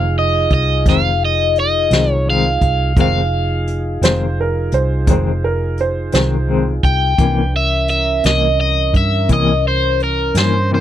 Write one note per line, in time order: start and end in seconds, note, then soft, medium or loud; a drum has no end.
0.00 0.46 F1 medium
0.00 2.93 D#4 medium
0.00 2.93 F4 medium
0.00 2.93 G#4 medium
0.00 0.18 F5 medium
0.19 0.52 D#5 medium
0.50 0.83 C2 medium
0.50 0.88 D#5 medium
0.50 kick medium
0.50 closed hi-hat medium
0.86 1.87 F1 medium
0.86 1.07 F2 medium
0.86 1.07 D#3 medium
0.86 1.08 G#3 medium
0.86 1.08 C4 medium
0.86 1.24 F5 medium
0.86 kick medium
0.86 snare soft
0.86 closed hi-hat medium
1.25 1.59 D#5 medium
1.56 closed hi-hat medium
1.60 2.13 D#5 medium
1.90 2.57 C2 medium
1.90 2.14 D#3 soft
1.90 2.13 G#3 soft
1.90 2.12 C4 soft
1.90 snare medium
1.90 closed hi-hat medium
2.13 2.30 C#5 medium
2.25 2.47 F2 medium
2.25 2.48 D#3 soft
2.25 2.48 G#3 medium
2.25 2.49 C4 medium
2.30 3.00 F5 medium
2.61 2.94 C2 medium
2.61 kick medium
2.61 closed hi-hat medium
2.96 3.98 F1 medium
2.96 3.18 F2 medium
2.96 3.18 D#3 medium
2.96 3.18 G#3 medium
2.96 3.19 C4 medium
2.96 7.14 D#4 medium
2.96 7.15 F4 medium
2.96 7.15 G#4 medium
2.96 kick loud
2.96 closed hi-hat medium
3.01 5.76 F5 medium
3.67 closed hi-hat medium
4.01 4.68 F1 medium
4.01 4.25 D#3 soft
4.01 4.24 G#3 medium
4.01 4.23 C4 medium
4.01 4.37 C5 medium
4.01 snare loud
4.01 closed hi-hat medium
4.41 4.73 A#4 medium
4.72 5.05 C2 medium
4.72 5.08 C5 medium
4.72 closed hi-hat medium
5.07 6.09 F1 medium
5.07 5.28 F2 medium
5.07 5.29 D#3 medium
5.07 5.29 G#3 medium
5.07 5.30 C4 medium
5.07 kick loud
5.07 closed hi-hat medium
5.11 5.44 C5 medium
5.44 5.78 A#4 medium
5.77 6.12 C5 medium
5.77 closed hi-hat soft
6.12 6.80 C2 medium
6.12 6.36 D#3 soft
6.12 6.35 G#3 soft
6.12 6.34 C4 medium
6.12 6.65 C5 medium
6.12 snare loud
6.12 closed hi-hat medium
6.47 6.69 F2 medium
6.47 6.70 D#3 medium
6.47 6.70 G#3 medium
6.47 6.70 C4 medium
6.83 7.16 C2 medium
6.83 7.56 G5 medium
6.83 kick medium
6.83 closed hi-hat soft
7.18 8.20 C2 medium
7.18 7.40 C3 medium
7.18 7.40 E3 medium
7.18 7.54 F3 soft
7.18 7.40 A#3 medium
7.18 7.41 C#4 medium
7.18 7.54 D4 soft
7.18 7.54 B4 soft
7.18 kick medium
7.18 closed hi-hat medium
7.54 10.80 E3 medium
7.54 10.80 C#4 medium
7.54 10.80 A#4 medium
7.54 7.89 E5 medium
7.88 8.26 E5 medium
7.88 closed hi-hat medium
8.23 8.91 C2 medium
8.23 8.47 E3 soft
8.23 8.46 A#3 soft
8.23 8.45 C#4 soft
8.23 8.59 D#5 medium
8.23 snare loud
8.23 closed hi-hat medium
8.61 8.96 D#5 medium
8.93 9.27 G2 medium
8.93 9.29 E5 medium
8.93 kick medium
8.93 closed hi-hat medium
9.29 10.31 C2 medium
9.29 9.51 C3 medium
9.29 9.51 E3 medium
9.29 9.52 A#3 medium
9.29 9.52 C#4 medium
9.29 kick medium
9.29 closed hi-hat medium
9.33 9.67 D#5 medium
9.68 10.03 C5 medium
10.00 10.38 A#4 medium
10.00 closed hi-hat medium
10.35 10.80 G2 medium
10.35 10.58 E3 soft
10.35 10.57 A#3 soft
10.35 10.56 C#4 medium
10.35 snare medium
10.35 closed hi-hat medium
10.39 10.70 C5 medium
10.71 10.80 C3 medium
10.71 10.80 E3 medium
10.71 10.80 A#3 medium
10.71 10.80 C#4 medium
10.71 10.80 C5 medium